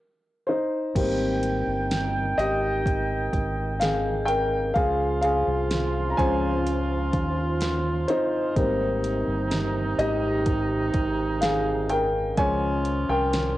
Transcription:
0.47 D#4 C5
0.95 G#1 D#3 G3 A#3 C4 G5, kick, closed hi-hat, crash
1.43 closed hi-hat
1.67 G1
1.91 snare, closed hi-hat
2.38 G#1 G4 D#5, closed hi-hat
2.86 kick, closed hi-hat
3.33 G#1, kick, closed hi-hat
3.80 G#4 F5, snare, closed hi-hat
4.25 A#4 G5, closed hi-hat
4.74 C#2 F3 C#4 F4 G#4 F5, kick, closed hi-hat
5.21 G#4 F5, closed hi-hat
5.47 C2
5.71 snare, closed hi-hat
6.10 A#5
6.17 C#2 F3 G#3 C#4 C5 G#5, kick, closed hi-hat
6.67 closed hi-hat
7.13 D#2, kick, closed hi-hat
7.61 snare, closed hi-hat
8.08 D#4 C5, closed hi-hat
8.56 G#1 C3 D#3 G3 A#3 C4 D#4, kick, closed hi-hat
9.04 closed hi-hat
9.27 G1
9.51 snare, closed hi-hat
9.98 G#1 G4 D#5, closed hi-hat
10.46 kick, closed hi-hat
10.94 G#1, kick, closed hi-hat
11.41 G#4 F5, snare, closed hi-hat
11.89 A#4 G5, closed hi-hat
12.36 C#2 F3 G#3 C#4 F4 C#5 G#5, kick, closed hi-hat
12.85 closed hi-hat
13.09 C2 A#4 G5
13.34 snare, closed hi-hat

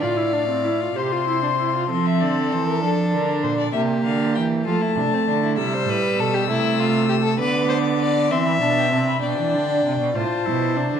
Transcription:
0.01 A2 F4 D5 F5
0.17 E4
0.33 D4
0.49 C4
0.64 E4
0.81 F4
0.95 C3 G4 C5 C6
1.12 F4
1.27 E4
1.42 D4
1.59 E4
1.75 F4
1.89 F3 C4 A4 C6
2.06 E5
2.20 D3 D5
2.51 E3 C5
2.68 A#4
2.82 F3 D4 A4
3.13 D3 A#4
3.43 A#2 C5
3.58 D5
3.73 C3 A#3 G4 E5
4.04 D3 F5
4.35 E3 G5
4.65 F3 A3 F4 A5
4.81 E4
4.96 C3 D4
5.13 C4
5.27 D3 D4
5.43 E4
5.57 C3 G3 E4 E6
5.74 C5
5.87 A2 B4
6.17 B2 A4
6.34 G4
6.48 C3 A3 E4
6.79 F4
7.08 G4
7.23 A4
7.39 D3 B3 B4 D6
7.69 C5
8.00 D5
8.31 E3 C4 E5 C6
8.46 B5
8.61 B2 D4 A5
8.78 G5
8.92 C3 C4 A5
9.08 B5
9.22 B2 D4 D5 G5
9.38 E3
9.54 D3
9.85 C3
10.00 B2
10.15 A2 F4 C5 A5
10.45 B2 E4
10.77 C3 D4
10.94 D3

